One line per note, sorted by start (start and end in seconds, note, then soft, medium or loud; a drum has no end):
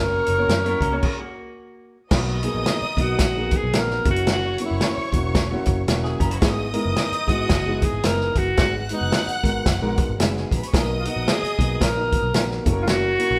0.00 0.20 F#1 loud
0.00 0.28 A#3 medium
0.00 0.28 C#4 medium
0.00 0.28 F#4 medium
0.00 0.29 A#4 medium
0.00 1.55 A#4 loud
0.00 1.02 C#5 medium
0.00 1.02 C#6 medium
0.26 0.45 F#1 medium
0.26 closed hi-hat medium
0.38 0.55 A#3 medium
0.38 0.56 C#4 medium
0.38 0.56 F#4 medium
0.38 0.56 C#5 medium
0.48 0.74 F#2 loud
0.48 snare loud
0.48 closed hi-hat medium
0.64 0.86 A#3 medium
0.64 0.86 C#4 medium
0.64 0.81 E4 medium
0.64 0.86 F#4 medium
0.64 0.86 A#4 loud
0.64 0.80 C#5 medium
0.64 closed hi-hat soft
0.81 0.98 C#2 medium
0.81 0.92 C#4 medium
0.81 0.92 A#4 medium
0.81 kick medium
0.81 closed hi-hat medium
0.92 1.03 A#3 medium
0.92 1.03 C#4 medium
0.92 1.03 F#4 medium
0.92 1.04 C#5 loud
1.03 1.19 G#4 medium
1.03 kick loud
1.03 crash medium
1.20 1.97 A#3 medium
1.20 1.97 F#4 medium
2.10 2.45 B1 loud
2.10 2.33 F#3 medium
2.10 2.33 A#3 medium
2.10 2.33 B3 medium
2.10 2.33 D#4 medium
2.10 2.34 F#4 medium
2.10 3.69 D#5 loud
2.10 3.69 D#6 loud
2.10 kick loud
2.10 snare loud
2.10 crash loud
2.42 2.77 F#3 medium
2.42 2.77 A#3 medium
2.42 2.77 B3 medium
2.42 2.77 D#4 medium
2.42 2.78 G#4 loud
2.42 closed hi-hat medium
2.55 2.63 A#1 medium
2.66 3.03 D#4 medium
2.66 snare loud
2.66 closed hi-hat medium
2.82 muted picked electric bass stroke soft
2.97 3.14 B1 medium
2.97 3.20 F#3 medium
2.97 3.20 A#3 medium
2.97 3.21 B3 medium
2.97 3.21 D#4 medium
2.97 3.21 F#4 medium
2.97 kick medium
2.97 closed hi-hat medium
3.01 3.58 F#4 loud
3.19 3.53 A#1 loud
3.19 kick loud
3.19 snare loud
3.19 closed hi-hat loud
3.35 3.63 F#3 medium
3.35 3.63 A#3 medium
3.35 3.64 B3 medium
3.35 3.63 D#4 medium
3.35 3.64 G#4 medium
3.51 kick medium
3.51 closed hi-hat medium
3.57 3.80 G#4 loud
3.64 3.72 B1 medium
3.73 3.99 A#1 loud
3.73 4.03 F#3 medium
3.73 4.03 A#3 medium
3.73 4.05 B3 medium
3.73 4.05 D#4 medium
3.73 4.04 F#4 medium
3.73 snare loud
3.73 closed hi-hat loud
3.79 4.08 A#4 loud
3.90 snare soft
4.04 4.56 F#1 loud
4.04 4.46 F#3 medium
4.04 4.46 A#3 medium
4.04 4.46 C#4 medium
4.04 4.47 E4 medium
4.04 4.47 F#4 medium
4.04 5.99 C#5 loud
4.04 6.00 C#6 loud
4.04 kick loud
4.04 closed hi-hat medium
4.11 4.29 F#4 loud
4.16 closed hi-hat medium
4.27 snare loud
4.27 closed hi-hat medium
4.33 4.60 F#4 loud
4.58 4.94 F#3 medium
4.58 4.94 A#3 medium
4.58 4.93 C#4 medium
4.58 4.94 E4 medium
4.58 4.94 F#4 medium
4.58 closed hi-hat medium
4.66 5.13 E4 medium
4.71 4.79 F#1 loud
4.81 snare loud
4.81 closed hi-hat medium
4.98 muted picked electric bass stroke soft
5.12 5.54 E1 medium
5.12 5.36 F#3 medium
5.12 5.36 A#3 medium
5.12 5.36 C#4 medium
5.12 5.36 E4 medium
5.12 5.36 F#4 medium
5.12 kick medium
5.12 closed hi-hat medium
5.35 kick medium
5.35 snare loud
5.35 closed hi-hat medium
5.51 5.79 F#3 loud
5.51 5.79 A#3 medium
5.51 5.79 C#4 medium
5.51 5.79 E4 medium
5.51 5.79 F#4 loud
5.66 5.84 F#1 medium
5.66 kick loud
5.66 closed hi-hat medium
5.87 6.13 E1 medium
5.87 6.29 F#3 medium
5.87 6.29 A#3 medium
5.87 6.29 C#4 medium
5.87 6.29 E4 medium
5.87 6.29 F#4 loud
5.87 snare loud
5.87 closed hi-hat loud
6.04 6.20 G#4 medium
6.04 6.21 G#5 medium
6.04 snare soft
6.09 6.22 G#4 medium
6.20 6.37 F#1 medium
6.20 6.31 C#4 medium
6.20 6.31 A#4 medium
6.20 6.25 A#4 medium
6.20 6.25 A#5 medium
6.20 kick medium
6.20 closed hi-hat medium
6.25 6.36 B4 medium
6.25 6.36 B5 medium
6.31 6.57 A#3 medium
6.31 6.57 F#4 medium
6.31 closed hi-hat medium
6.35 6.42 C#5 medium
6.35 6.43 C#6 loud
6.41 6.76 G#1 loud
6.41 6.64 G#3 medium
6.41 6.64 B3 medium
6.41 6.64 D#4 medium
6.41 6.64 E4 medium
6.41 6.64 G#4 loud
6.41 8.33 D#5 loud
6.41 8.33 D#6 loud
6.41 kick loud
6.41 snare loud
6.41 closed hi-hat medium
6.73 7.08 G#3 medium
6.73 7.08 B3 medium
6.73 7.08 D#4 medium
6.73 7.08 E4 medium
6.73 7.08 A#4 loud
6.73 closed hi-hat medium
6.85 6.94 F#1 medium
6.96 7.31 D#4 medium
6.96 snare loud
6.96 closed hi-hat medium
7.12 muted picked electric bass stroke soft
7.12 closed hi-hat medium
7.27 7.45 G#1 medium
7.27 7.51 G#3 medium
7.27 7.51 B3 medium
7.27 7.51 D#4 medium
7.27 7.51 E4 medium
7.27 7.86 F#4 loud
7.27 7.51 G#4 medium
7.27 kick medium
7.27 closed hi-hat medium
7.49 7.84 F#1 loud
7.49 kick loud
7.49 snare loud
7.49 closed hi-hat loud
7.66 7.94 G#3 medium
7.66 7.94 B3 medium
7.66 7.94 D#4 medium
7.66 7.94 E4 medium
7.66 7.94 G#4 medium
7.82 8.08 G#4 medium
7.82 kick loud
7.82 closed hi-hat medium
7.93 8.01 G#1 medium
8.03 8.29 F#1 medium
8.03 8.44 G#3 medium
8.03 8.44 B3 medium
8.03 8.44 D#4 medium
8.03 8.44 E4 medium
8.03 8.44 A#4 medium
8.03 8.39 A#4 loud
8.03 snare loud
8.03 closed hi-hat loud
8.20 snare soft
8.36 8.53 F#1 medium
8.36 8.59 F#4 loud
8.36 kick medium
8.36 closed hi-hat medium
8.57 8.91 G#1 loud
8.57 8.80 G#3 medium
8.57 8.80 B3 medium
8.57 8.80 D#4 medium
8.57 8.80 F#4 medium
8.57 8.74 F#4 loud
8.57 8.80 G#4 medium
8.57 10.12 F#5 loud
8.57 10.13 F#6 loud
8.57 kick loud
8.57 snare loud
8.57 closed hi-hat medium
8.89 9.24 G#3 medium
8.89 9.24 B3 medium
8.89 9.24 D#4 medium
8.89 9.24 F#4 medium
8.89 9.24 B4 medium
8.89 closed hi-hat medium
8.93 9.42 D#4 medium
9.01 9.10 F#1 medium
9.12 snare loud
9.12 closed hi-hat medium
9.28 muted picked electric bass stroke soft
9.28 closed hi-hat soft
9.43 9.60 G#1 medium
9.43 9.66 G#3 medium
9.43 9.67 B3 medium
9.43 9.66 D#4 medium
9.43 9.67 F#4 medium
9.43 9.67 A#4 medium
9.43 kick medium
9.43 closed hi-hat medium
9.66 9.78 F#1 loud
9.66 kick loud
9.66 snare loud
9.66 closed hi-hat loud
9.81 9.94 A#1 medium
9.81 10.09 G#3 medium
9.81 10.10 B3 medium
9.81 10.10 D#4 medium
9.81 10.09 F#4 medium
9.81 10.10 A#4 loud
9.98 kick loud
9.98 closed hi-hat medium
10.09 10.17 G#1 loud
10.19 10.44 F#1 medium
10.19 10.60 G#3 medium
10.19 10.60 B3 medium
10.19 10.60 D#4 medium
10.19 10.30 E4 medium
10.19 10.60 F#4 medium
10.19 10.60 G#4 loud
10.19 10.31 E5 medium
10.19 snare loud
10.19 closed hi-hat loud
10.31 10.38 F#4 medium
10.31 10.38 F#5 medium
10.37 10.52 G#4 medium
10.37 10.51 G#5 medium
10.37 snare soft
10.51 10.60 A#1 medium
10.51 10.56 A#4 medium
10.51 10.56 A#5 medium
10.51 kick medium
10.51 closed hi-hat medium
10.57 10.67 B4 medium
10.57 10.67 B5 medium
10.63 10.74 C#5 medium
10.63 closed hi-hat medium
10.68 10.74 C#6 medium
10.73 11.07 B1 loud
10.73 10.95 A#3 medium
10.73 10.95 B3 medium
10.73 10.96 D#4 medium
10.73 10.96 F#4 medium
10.73 10.95 A#4 loud
10.73 12.31 D#5 loud
10.73 12.31 D#6 loud
10.73 kick loud
10.73 snare loud
10.73 closed hi-hat medium
11.00 11.08 F4 medium
11.05 11.39 A#3 medium
11.05 11.39 B3 medium
11.05 11.39 D#4 medium
11.05 11.40 F#4 medium
11.05 11.28 F#4 medium
11.05 11.39 A#4 medium
11.05 closed hi-hat medium
11.16 11.25 A#1 medium
11.28 11.85 G#4 medium
11.28 snare loud
11.28 closed hi-hat medium
11.43 muted picked electric bass stroke soft
11.43 closed hi-hat medium
11.58 11.76 B1 medium
11.58 11.82 A#3 medium
11.58 11.82 B3 medium
11.58 11.82 D#4 medium
11.58 11.82 F#4 medium
11.58 11.82 G#4 medium
11.58 kick medium
11.58 closed hi-hat medium
11.81 12.14 A#1 medium
11.81 12.68 A#4 loud
11.81 kick medium
11.81 snare loud
11.81 closed hi-hat loud
11.97 12.25 A#3 medium
11.97 12.25 B3 medium
11.97 12.24 D#4 medium
11.97 12.25 F#4 medium
11.97 12.25 A#4 medium
12.12 kick medium
12.12 closed hi-hat medium
12.23 12.31 B1 medium
12.33 12.59 A#1 medium
12.33 12.64 A#3 medium
12.33 12.66 B3 medium
12.33 12.66 D#4 medium
12.33 12.64 F#4 medium
12.33 12.66 A#4 medium
12.33 snare loud
12.33 closed hi-hat loud
12.51 snare soft
12.65 13.16 F#1 loud
12.65 13.07 A#3 medium
12.65 13.07 C#4 medium
12.65 13.07 E4 medium
12.65 13.07 F#4 medium
12.65 12.72 A4 medium
12.65 13.39 C#5 medium
12.65 13.39 C#6 loud
12.65 kick loud
12.65 closed hi-hat medium
12.72 13.10 A#4 loud
12.83 12.90 F4 medium
12.87 13.39 F#4 loud
12.87 snare loud
12.87 closed hi-hat medium
13.18 13.39 A#3 medium
13.18 13.39 C#4 medium
13.18 13.39 E4 medium
13.18 13.39 F#4 medium
13.18 13.39 A#4 medium
13.18 closed hi-hat medium
13.31 13.39 A#1 loud